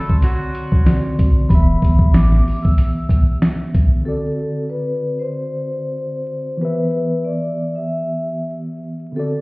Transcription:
Already playing: D3 A3 C4 F#4 A4 D5
0.08 C6, kick
0.22 F#3 F#4, closed hi-hat
0.55 closed hi-hat
0.72 kick
0.85 D3 C4 F#4 D5, snare, closed hi-hat
1.19 kick, closed hi-hat
1.47 E1 E3 B3 B5, kick, closed hi-hat
1.52 G4 E5
1.82 kick, closed hi-hat
1.99 kick
2.14 A1 D6, snare, closed hi-hat
2.32 snare
2.48 open hi-hat
2.63 E6, kick
2.78 closed hi-hat
3.09 kick, closed hi-hat
3.42 snare, closed hi-hat
3.74 kick, closed hi-hat
4.01 D3 C4
4.05 F#4 A4 D5
4.70 B4
5.19 C5
6.57 E3 B3
6.62 G4 B4 E5
7.24 D5
7.75 E5
9.12 D3 C4
9.16 F#4 A4 D5

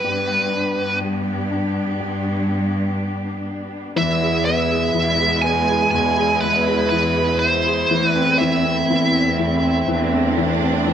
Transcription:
Already playing: G4 B4
0.02 G2 G3 B3 D4
0.53 D4
0.77 G2
1.01 G3
1.51 D4
2.00 G2 G3
3.96 E2 B2 E3 G#3 E4 E5
4.22 G#4
4.45 B3 E5
4.71 G#4
4.94 E2 E3
5.19 G#4
5.42 B3 G#5
5.69 G#4
5.91 E2 B2 G#5
6.18 G#4
6.41 G#3 B4
6.67 G#4
6.89 E3 B4
7.17 G#4
7.39 C5
7.66 G#4
7.89 E2 E3 A3 C4
8.08 B4
8.16 C4
8.38 E3 E5
8.66 C4
8.88 E2 E3
9.15 C4
9.39 E3
9.63 C4
9.87 E2 E3 D4
10.13 C4
10.38 E3
10.62 C4
10.87 E3

